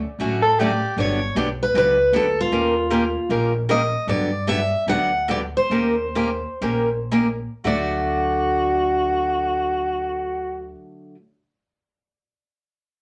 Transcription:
0.00 0.55 D5 medium
0.19 0.81 A1 medium
0.19 0.40 D3 medium
0.19 0.41 F#3 medium
0.19 0.41 A3 medium
0.19 0.41 C#4 medium
0.19 0.41 F#4 medium
0.42 0.60 A4 medium
0.59 0.70 D3 medium
0.59 0.70 F#3 medium
0.59 0.70 A3 medium
0.59 0.70 C#4 medium
0.59 0.70 F#4 medium
0.59 0.97 G4 medium
0.59 0.96 D5 medium
0.97 1.28 G1 medium
0.97 1.18 D3 medium
0.97 1.18 F#3 medium
0.97 1.19 B3 medium
0.97 1.19 D4 medium
0.97 1.19 G4 medium
0.97 1.35 C#5 medium
1.35 1.69 B1 medium
1.35 1.47 D3 medium
1.35 1.47 F#3 medium
1.35 1.47 B3 medium
1.35 1.47 D4 loud
1.35 1.48 G4 medium
1.63 1.77 B4 medium
1.74 2.07 C#2 medium
1.74 1.96 D3 medium
1.74 1.96 F#3 medium
1.74 1.96 B3 medium
1.74 1.96 D4 medium
1.74 1.96 G4 medium
1.74 2.12 B4 medium
2.12 2.46 D2 medium
2.12 2.25 D3 medium
2.12 2.25 F#3 medium
2.12 2.25 B3 medium
2.12 2.25 D4 medium
2.12 2.25 G4 medium
2.12 2.40 A4 medium
2.41 3.52 F4 medium
2.51 3.14 D#2 medium
2.51 2.73 D#3 medium
2.51 2.73 A#3 medium
2.51 2.73 C#4 medium
2.51 2.73 G4 medium
2.51 2.74 A#4 medium
2.90 3.02 D#3 medium
2.90 3.02 A#3 medium
2.90 3.02 C#4 medium
2.90 3.02 G4 medium
2.90 3.02 A#4 medium
3.29 3.92 A#1 medium
3.29 3.51 D#3 medium
3.29 3.51 A#3 medium
3.29 3.51 C#4 medium
3.29 3.51 G4 medium
3.29 3.52 A#4 medium
3.69 3.80 D#3 medium
3.69 3.80 A#3 medium
3.69 3.80 C#4 medium
3.69 3.81 G4 medium
3.69 3.80 A#4 medium
3.69 4.06 D#5 medium
4.07 4.71 G2 medium
4.07 4.29 D3 medium
4.07 4.29 F#3 medium
4.07 4.29 B3 medium
4.07 4.29 D4 medium
4.07 4.29 G4 medium
4.07 4.49 D5 medium
4.47 4.58 D3 medium
4.47 4.59 F#3 medium
4.47 4.59 B3 medium
4.47 4.59 D4 medium
4.47 4.59 G4 medium
4.47 4.85 E5 medium
4.86 5.53 D2 medium
4.86 5.09 D3 medium
4.86 5.09 F#3 medium
4.86 5.09 B3 medium
4.86 5.09 D4 medium
4.86 5.09 G4 medium
4.86 5.30 F#5 loud
5.28 5.40 D3 medium
5.28 5.40 F#3 medium
5.28 5.40 B3 medium
5.28 5.40 D4 medium
5.28 5.40 G4 medium
5.28 5.37 D5 medium
5.57 7.08 C5 medium
5.70 6.43 D#2 medium
5.70 5.94 D#3 medium
5.70 5.94 A#3 medium
5.70 5.95 C#4 medium
5.70 5.95 G4 medium
5.70 5.95 A#4 medium
6.15 6.28 D#3 medium
6.15 6.28 A#3 medium
6.15 6.28 C#4 medium
6.15 6.28 G4 medium
6.15 6.28 A#4 medium
6.61 7.44 A#1 medium
6.61 6.88 D#3 medium
6.61 6.88 A#3 medium
6.61 6.88 C#4 medium
6.61 6.88 G4 medium
6.61 6.88 A#4 medium
7.11 7.26 D#3 medium
7.11 7.26 A#3 medium
7.11 7.26 C#4 medium
7.11 7.26 G4 medium
7.11 7.26 A#4 medium
7.64 10.72 D2 medium
7.64 11.14 D3 medium
7.64 11.15 F#3 medium
7.64 11.15 A3 medium
7.64 10.72 F#4 medium
7.64 11.16 F#4 medium
7.64 10.75 D5 medium

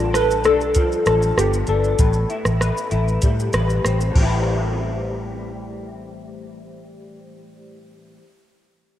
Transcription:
0.00 0.44 A1 medium
0.00 1.99 G2 medium
0.00 0.54 D3 medium
0.00 0.75 A3 medium
0.00 0.43 D4 medium
0.00 0.16 F4 medium
0.00 0.13 A4 medium
0.13 1.05 A4 medium
0.13 0.46 B4 loud
0.13 cross-stick medium
0.13 closed hi-hat medium
0.13 shaker medium
0.31 shaker medium
0.44 0.94 B1 medium
0.44 1.67 D4 medium
0.44 1.40 A4 loud
0.44 cross-stick medium
0.44 closed hi-hat soft
0.44 shaker soft
0.61 shaker soft
0.75 2.05 F3 medium
0.75 kick medium
0.75 closed hi-hat medium
0.75 shaker medium
0.92 shaker soft
1.06 1.31 A1 medium
1.06 1.99 A4 medium
1.06 cross-stick medium
1.06 closed hi-hat soft
1.06 shaker soft
1.22 shaker medium
1.37 1.62 G1 medium
1.37 3.84 B3 medium
1.37 1.52 G4 medium
1.37 cross-stick medium
1.37 closed hi-hat medium
1.37 shaker medium
1.53 shaker medium
1.67 1.93 G1 medium
1.67 2.05 D4 medium
1.67 3.81 A4 medium
1.67 closed hi-hat soft
1.67 shaker soft
1.84 shaker soft
1.99 2.24 A1 loud
1.99 4.10 A2 medium
1.99 2.60 B4 medium
1.99 kick loud
1.99 closed hi-hat medium
1.99 shaker medium
2.13 shaker soft
2.29 2.90 E4 medium
2.29 closed hi-hat soft
2.29 shaker soft
2.45 2.70 A1 medium
2.45 cross-stick medium
2.45 shaker soft
2.60 3.53 B4 medium
2.60 cross-stick medium
2.60 closed hi-hat medium
2.60 shaker medium
2.77 shaker medium
2.91 3.17 A1 medium
2.91 4.21 E4 medium
2.91 closed hi-hat soft
2.91 shaker soft
3.08 shaker soft
3.22 3.48 A2 medium
3.22 4.17 G3 medium
3.22 kick medium
3.22 closed hi-hat medium
3.22 shaker medium
3.40 shaker soft
3.53 3.78 A1 medium
3.53 4.22 B4 medium
3.53 cross-stick medium
3.53 closed hi-hat soft
3.53 shaker soft
3.70 shaker soft
3.85 4.10 A1 medium
3.85 4.19 C4 medium
3.85 cross-stick medium
3.85 closed hi-hat medium
3.85 shaker medium
4.01 shaker medium
4.11 8.17 A2 medium
4.11 8.21 E3 medium
4.16 8.18 A1 medium
4.16 8.23 G3 medium
4.16 8.26 C4 medium
4.16 kick medium
4.16 crash medium
4.22 8.28 E4 medium
4.22 8.31 B4 medium

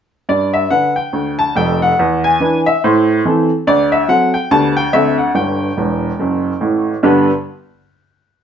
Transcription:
0.29 0.65 G2 medium
0.29 0.50 D5 medium
0.54 0.68 E5 medium
0.70 0.94 D3 soft
0.70 0.94 D4 soft
0.70 0.95 B4 soft
0.70 0.92 F#5 medium
0.96 1.32 G5 medium
1.13 1.49 D2 medium
1.39 1.53 A5 medium
1.55 1.90 F1 medium
1.55 1.89 F2 medium
1.55 1.77 G5 medium
1.82 2.18 F#5 medium
1.99 2.35 E2 medium
2.24 2.60 G#5 medium
2.40 2.64 E3 soft
2.40 2.64 D4 soft
2.40 2.64 B4 soft
2.66 2.81 E5 medium
2.84 3.19 A2 medium
2.84 3.41 C5 medium
3.25 3.48 E3 soft
3.25 3.49 C4 soft
3.25 3.49 A4 medium
3.67 4.03 D2 medium
3.67 3.88 D5 medium
3.92 4.07 E5 medium
4.08 4.32 F#3 soft
4.08 4.32 C4 soft
4.08 4.32 A4 soft
4.08 4.30 F#5 medium
4.34 4.49 G5 medium
4.51 4.87 D2 medium
4.51 4.75 D3 soft
4.51 4.75 B3 soft
4.51 4.76 G4 soft
4.51 4.72 A5 medium
4.77 4.91 G5 medium
4.93 5.29 D2 medium
4.93 5.16 D3 soft
4.93 5.17 C4 soft
4.93 5.17 A4 soft
4.93 5.14 E5 medium
5.18 5.33 F#5 medium
5.34 5.69 G1 medium
5.34 5.68 G2 medium
5.34 6.63 G5 medium
5.77 6.09 E1 medium
5.77 6.09 E2 soft
6.19 6.51 F#1 medium
6.19 6.51 F#2 medium
6.61 6.92 A1 soft
6.61 6.92 A2 medium
7.03 7.29 G2 medium
7.03 7.30 D3 medium
7.03 7.29 B3 medium
7.03 7.30 D4 medium
7.03 7.30 G4 medium
7.03 7.30 B4 medium

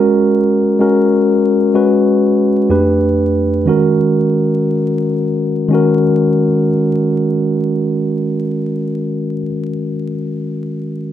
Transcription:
0.00 0.78 G#3 medium
0.00 0.79 C#4 medium
0.00 0.80 F#4 medium
0.00 0.80 A#4 medium
0.79 1.73 G#3 medium
0.79 1.73 C#4 medium
0.79 1.74 F#4 medium
0.79 1.74 A#4 medium
1.74 2.69 G#3 medium
1.74 2.69 C#4 medium
1.74 2.69 F#4 medium
1.74 2.70 B4 medium
2.69 3.67 F2 medium
2.69 3.67 A3 medium
2.69 3.67 D4 medium
2.69 3.67 G4 medium
2.69 3.67 B4 medium
3.66 5.66 D#3 medium
3.66 5.66 G#3 medium
3.66 5.67 C#4 medium
3.66 5.67 F#4 medium
3.66 5.68 A#4 medium
5.68 9.35 D#3 medium
5.68 9.36 G#3 medium
5.68 9.37 C#4 medium
5.73 9.39 F#4 medium
5.73 9.41 A#4 medium

